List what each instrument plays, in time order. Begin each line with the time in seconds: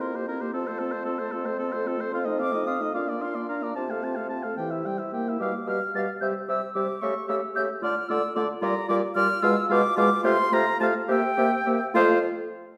Already playing: bassoon F2
0.00 french horn C4, clarinet E4, oboe A#4, flute C6
0.14 french horn A#3, clarinet G4, oboe C5
0.28 french horn C4, clarinet E4, oboe A#4, flute A#5
0.40 french horn A#3, clarinet G4, oboe C5
0.53 bassoon F2, french horn C4, clarinet F4, oboe A4, flute A5
0.67 french horn A3, clarinet A4, oboe C5
0.79 french horn C4, clarinet F4, oboe A4
0.92 french horn A3, clarinet A4, oboe C5
1.05 french horn C4, clarinet F4, oboe A4
1.19 french horn A3, clarinet A4, oboe C5
1.32 bassoon F2, french horn C4, clarinet F4, oboe A4
1.46 french horn A3, clarinet A4, oboe C5
1.59 french horn C4, clarinet F4, oboe A4
1.72 french horn A3, clarinet A4, oboe C5
1.85 french horn C4, clarinet F4, oboe A4
1.99 french horn A3, clarinet A4, oboe C5
2.12 bassoon F2, french horn C4, clarinet F4, oboe F5, flute C6
2.25 french horn A3, clarinet D#4, oboe D#5
2.39 french horn C4, clarinet F4, oboe F5, flute D6
2.52 french horn A3, clarinet D#4, oboe D#5
2.66 french horn C4, clarinet F4, oboe F5, flute D#6
2.80 french horn A3, clarinet D#4, oboe D#5
2.94 bassoon A#2, french horn D4, clarinet F4, oboe F5, flute D6
3.08 french horn A#3, clarinet D4, oboe D5
3.20 french horn D4, clarinet F4, oboe F5, flute C6
3.34 french horn A#3, clarinet D4, oboe D5
3.48 french horn D4, clarinet F4, oboe F5, flute A#5
3.62 french horn A#3, clarinet D4, oboe D5
3.75 bassoon C3, french horn C4, clarinet F4, oboe A5, flute A5
3.89 french horn A3, clarinet A4, oboe F5
4.03 french horn C4, clarinet F4, oboe A5
4.16 french horn A3, clarinet A4, oboe F5
4.29 french horn C4, clarinet F4, oboe A5
4.43 french horn A3, clarinet A4, oboe F5
4.57 bassoon C3, french horn E3, clarinet G4, oboe G5
4.71 clarinet E4, oboe E5
4.84 french horn G3, clarinet G4, oboe G5
4.98 clarinet E4, oboe E5
5.12 french horn A#3, clarinet G4, oboe G5
5.27 clarinet E4, oboe E5
5.40 bassoon B2, french horn G3, clarinet G4, oboe F5, flute D6
5.67 bassoon B2, french horn G3, clarinet G4, oboe F5, flute F6
5.95 bassoon B2, french horn G3, clarinet G4, oboe F5, flute A6
6.21 bassoon C3, french horn G3, clarinet G4, oboe E5, flute G6
6.48 bassoon C3, french horn G3, clarinet G4, oboe E5, flute E6
6.74 bassoon C3, french horn G3, clarinet G4, oboe E5, flute D6
7.01 bassoon C#3, french horn A3, clarinet G4, oboe E5, flute C#6
7.28 bassoon C#3, french horn A3, clarinet G4, oboe E5, flute E6
7.55 bassoon C#3, french horn A3, clarinet G4, oboe E5, flute G6
7.82 bassoon D3, french horn A3, clarinet F4, oboe D5, flute F6
8.09 bassoon D3, french horn A3, clarinet F4, oboe D5, flute E6
8.35 bassoon D3, french horn A3, clarinet F4, oboe D5, flute D6
8.62 bassoon A#2, french horn G3, clarinet F4, oboe D5, flute A#5
8.88 bassoon A#2, french horn G3, clarinet F4, oboe D5, flute D6
9.15 bassoon A#2, french horn G3, clarinet F4, oboe D5, flute F6
9.42 bassoon B2, french horn G#3, clarinet F4, oboe F5, flute E6
9.69 bassoon B2, french horn G#3, clarinet F4, oboe F5, flute D6
9.96 bassoon B2, french horn G#3, clarinet F4, oboe F5, flute D6
10.24 bassoon C3, french horn A3, clarinet F4, oboe F5, flute C6
10.52 bassoon C3, french horn A3, clarinet F4, oboe F5, flute A#5
10.79 bassoon C3, french horn A3, clarinet F4, oboe F5, flute A5
11.08 bassoon C3, french horn A#3, clarinet G4, oboe E5, flute G5
11.36 bassoon C3, french horn A#3, clarinet G4, oboe E5
11.65 bassoon C3, french horn A#3, clarinet G4, oboe E5
11.94 bassoon F2, french horn A3, clarinet F4, oboe C5, flute F5